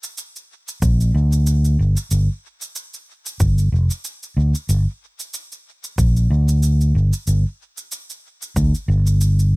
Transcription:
0.04 shaker
0.18 shaker
0.36 shaker
0.68 shaker
0.82 A#1, kick, shaker
1.00 shaker
1.14 D2
1.33 shaker
1.47 shaker
1.65 shaker
1.79 G1
1.97 shaker
2.11 G1, shaker
2.62 shaker
2.76 shaker
2.94 shaker
3.26 shaker
3.40 G1, kick, shaker
3.58 shaker
3.72 F1
3.91 shaker
4.04 shaker
4.23 shaker
4.37 D2
4.55 shaker
4.69 G1, shaker
5.20 shaker
5.34 shaker
5.52 shaker
5.84 shaker
5.98 A#1, kick, shaker
6.17 shaker
6.30 D2
6.49 shaker
6.63 shaker
6.81 shaker
6.95 G1
7.13 shaker
7.27 G1, shaker
7.78 shaker
7.92 shaker
8.10 shaker
8.42 shaker
8.56 D2, kick, shaker
8.75 shaker
8.88 G1
9.07 shaker
9.21 shaker
9.39 shaker

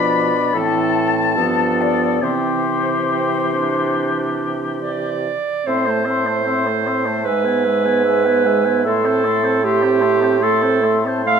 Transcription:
Already playing: B2 F3 D4 D5 B5
0.53 A2 E3 C4 A4 A5
1.36 G2 F3 B3 A4
1.81 D5
2.21 C3 E3 C4 G4 C5
3.09 C4
3.53 D4
4.82 D5
5.66 A2 C4 C5 E5 C6
5.86 A3 C5 A5
6.05 C4 E5
6.10 C6
6.26 A3 C5 A5
6.46 C4 E5 C6
6.67 A3 C5 A5
6.87 C4 E5 C6
7.06 A3 C5 A5
7.26 G#2 G#3 B4 E5 G#5
7.45 B3 E5 G#5
7.64 G#3 E5 G#5
7.85 B3 E5 G#5
8.05 G#3 E5 G#5
8.25 B3 E5 G#5
8.46 G#3 E5 G#5
8.65 B3 E5 G#5
8.85 A2 A3 A4 E5 C6
9.04 C4 C5 A5
9.25 A3 E5 C6
9.44 C4 C5 A5
9.63 A3 G4 E5 C6
9.82 C4 C5 A5
10.01 A3 E5 C6
10.21 C4 C5 A5
10.40 A3 A4 E5 C6
10.62 C4 C5 A5
10.83 A3 E5 C6
11.05 C4 C5 A5
11.25 A3 E5 F5 C6

